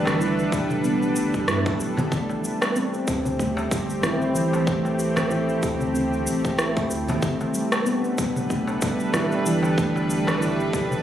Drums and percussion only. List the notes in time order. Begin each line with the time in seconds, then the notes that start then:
0.05 cross-stick, darbuka ka, darbuka tek, low conga, cabasa
0.21 cabasa
0.39 cabasa
0.52 kick, cabasa
0.70 darbuka tek, darbuka dum, cabasa
0.84 cabasa
1.02 darbuka ka, cabasa
1.16 cabasa
1.34 kick, cabasa
1.48 cross-stick, cabasa
1.65 kick, darbuka ka, cabasa
1.80 darbuka ka, cabasa
1.97 darbuka ka, darbuka tek, darbuka dum, low conga, cabasa
2.12 kick, cabasa
2.29 darbuka tek, cabasa
2.44 cabasa
2.61 cross-stick, darbuka ka, darbuka tek, cabasa
2.76 cabasa
2.94 cabasa
3.08 kick, cabasa
3.25 darbuka dum, cabasa
3.39 kick, cabasa
3.57 darbuka tek, cabasa
3.71 kick, cabasa
3.90 cabasa
4.03 cross-stick, low conga, cabasa
4.22 cabasa
4.35 cabasa
4.53 darbuka tek, cabasa
4.67 kick, cabasa
4.85 darbuka tek, cabasa
4.99 cabasa
5.16 cross-stick, darbuka ka, darbuka tek, low conga, cabasa
5.31 cabasa
5.49 cabasa
5.63 kick, cabasa
5.81 darbuka dum, cabasa
5.95 cabasa
6.13 cabasa
6.27 cabasa
6.45 kick, cabasa
6.59 cross-stick, cabasa
6.77 kick, cabasa
6.90 cabasa
7.08 darbuka ka, darbuka tek, low conga, darbuka dum, cabasa
7.22 kick, cabasa
7.41 darbuka tek, cabasa
7.54 cabasa
7.72 cross-stick, darbuka ka, darbuka tek, cabasa
7.86 cabasa
8.04 cabasa
8.18 kick, cabasa
8.36 darbuka dum, cabasa
8.50 kick, cabasa
8.68 darbuka tek, cabasa
8.82 kick, cabasa
9.00 cabasa
9.14 cross-stick, low conga, cabasa
9.32 cabasa
9.46 cabasa
9.63 darbuka tek, cabasa
9.78 kick, cabasa
9.96 darbuka tek, cabasa
10.10 cabasa
10.27 cross-stick, darbuka ka, darbuka tek, low conga, cabasa
10.42 cabasa
10.60 cabasa
10.73 kick, cabasa
10.91 darbuka tek, darbuka dum, cabasa